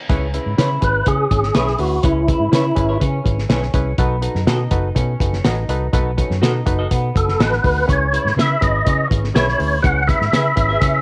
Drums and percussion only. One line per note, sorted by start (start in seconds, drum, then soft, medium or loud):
0.09 kick loud
0.09 closed hi-hat medium
0.34 closed hi-hat medium
0.58 snare loud
0.58 closed hi-hat medium
0.82 kick medium
0.82 closed hi-hat medium
1.06 kick medium
1.06 closed hi-hat medium
1.31 kick medium
1.31 closed hi-hat medium
1.43 snare soft
1.55 snare loud
1.55 closed hi-hat medium
1.67 snare soft
1.78 open hi-hat medium
2.03 kick loud
2.03 closed hi-hat medium
2.28 kick medium
2.28 closed hi-hat medium
2.53 snare loud
2.53 closed hi-hat medium
2.76 kick medium
2.76 closed hi-hat medium
3.01 kick medium
3.01 closed hi-hat medium
3.26 kick medium
3.26 closed hi-hat medium
3.39 snare soft
3.50 snare loud
3.50 closed hi-hat medium
3.62 snare soft
3.74 kick medium
3.74 closed hi-hat medium
3.98 kick loud
3.98 closed hi-hat medium
4.22 closed hi-hat medium
4.35 snare soft
4.47 snare loud
4.47 closed hi-hat medium
4.71 kick medium
4.71 closed hi-hat medium
4.96 kick medium
4.96 closed hi-hat medium
5.20 kick medium
5.20 closed hi-hat medium
5.33 snare soft
5.45 snare loud
5.45 closed hi-hat medium
5.69 closed hi-hat medium
5.93 kick loud
5.93 closed hi-hat medium
6.18 kick medium
6.18 closed hi-hat medium
6.31 snare soft
6.43 snare medium
6.43 closed hi-hat medium
6.67 kick medium
6.67 closed hi-hat medium
6.91 kick medium
6.91 closed hi-hat medium
7.16 kick medium
7.16 closed hi-hat medium
7.29 snare soft
7.40 snare loud
7.40 closed hi-hat medium
7.53 snare soft
7.64 kick medium
7.64 open hi-hat medium
7.89 kick loud
7.89 closed hi-hat medium
8.14 closed hi-hat medium
8.27 snare soft
8.39 snare loud
8.39 closed hi-hat medium
8.62 kick loud
8.62 closed hi-hat medium
8.87 kick medium
8.87 closed hi-hat medium
9.11 kick medium
9.11 closed hi-hat medium
9.24 snare soft
9.36 snare loud
9.36 closed hi-hat medium
9.48 snare soft
9.60 open hi-hat soft
9.84 kick loud
9.84 closed hi-hat medium
10.09 kick medium
10.09 closed hi-hat medium
10.22 snare soft
10.33 snare medium
10.33 closed hi-hat medium
10.57 kick medium
10.57 closed hi-hat medium
10.82 kick medium
10.82 closed hi-hat medium